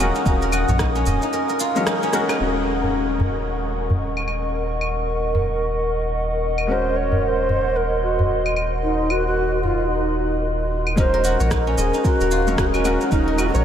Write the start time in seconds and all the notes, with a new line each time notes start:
Already playing: D#1 F#3 C#4 D#4 A#4 C#5 D#5 G#5 D#6
0.00 G#3 C#4 F#4 A#4
0.15 D#4, shaker
0.24 D#1 G#3 C#4 D#4 F#4, kick, shaker
0.28 A#4
0.42 A#4, shaker
0.52 F#4, claves, shaker
0.68 A#1 C#5, udu, shaker
0.79 D#4, kick, cross-stick, shaker
0.95 C#4, shaker
1.06 D#1 D#5, udu, shaker
1.22 D#4, shaker
1.33 A#4, shaker
1.49 A#4, shaker
1.60 F4, shaker
1.75 F#3 G#3 C#4 A#4 C#5, shaker
1.87 D#4, cross-stick, shaker
2.03 C#4, shaker
2.12 G#3 C#4 F#4 A#4, cross-stick, shaker
2.29 D#4, cross-stick, claves, shaker
2.38 D#1 G#3 C#4 F#4 A#4 D#5 F#5 C#6
2.42 A#4
2.83 udu
3.20 udu
3.90 udu
4.17 claves
4.28 claves
4.81 claves
5.35 udu
6.58 claves
6.67 G#3 C#4 F#4 C5 C6
6.71 A#4
6.96 C#5
7.12 udu
7.23 C#5
7.28 C5
7.49 udu
7.76 A#4
8.03 F#4
8.19 udu
8.46 claves
8.56 claves
8.84 D#4
9.10 F#4, claves
9.27 F#4
9.63 F4, udu
9.91 D#4
10.87 claves
10.96 D#1 G#3 C#4 D#4 F#4 A#4 C5 D#5 A#5, kick, shaker
11.00 A#4
11.14 A#4
11.24 F#4, shaker
11.40 A#1 A#4 C#5, shaker
11.51 D#4, kick, cross-stick, shaker
11.67 C#4
11.78 D#1 G#4 D#5, shaker
11.94 D#4, shaker
12.04 F#4 A#4, kick, shaker
12.21 D#1 A#4, shaker
12.31 F4, shaker
12.47 F#3 G#3 C#4 A#4 C#5, shaker
12.58 D#1 D#4 F#4, kick, cross-stick, shaker
12.67 G#4
12.74 C#4 F#4, claves, shaker
12.84 G#3 C#4 F#4 A#4, claves, shaker
13.01 D#4, shaker
13.10 D#1 G#3 C#4 D#4 F#4 A#4, kick, shaker
13.28 A#4
13.38 F#4, claves, shaker
13.54 A#1 C#5, shaker